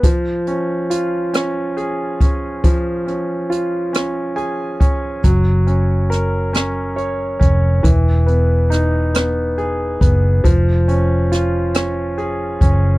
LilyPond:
<<
  \new Staff \with { instrumentName = "Grand piano" } { \time 6/8 \key des \major \tempo 4. = 46 << { r2. | r2 aes''4 | r2. | r2. |
r2. | } \\ { f8 des'8 f'8 des'8 aes'8 des'8 | f8 des'8 f'8 des'8 aes'8 des'8 | ges8 des'8 bes'8 des'8 des''8 des'8 | e8 b8 dis'8 b8 gis'8 b8 |
f8 des'8 f'8 des'8 aes'8 des'8 | } >> }
  \new Staff \with { instrumentName = "Fingered electric bass" } { \clef bass \time 6/8 \key des \major r2. | r2. | ges,,2~ ges,,8 f,,8 | e,,2~ e,,8 ges,,8 |
f,,2~ f,,8 ges,,8 | }
  \new DrumStaff \with { instrumentName = "Drums" } \drummode { \time 6/8 <hh bd>8 hh8 hh8 <hh ss>8 hh8 <hh bd>8 | <hh bd>8 hh8 hh8 <hh ss>8 hh8 <hh bd>8 | <hh bd>8 hh8 <hh ss>8 <hh ss>8 hh8 <hh bd>8 | <hh bd>8 hh8 <hh ss>8 <hh ss>8 hh8 <hh bd>8 |
<hh bd>8 hh8 <hh ss>8 <hh ss>8 hh8 <hh bd>8 | }
>>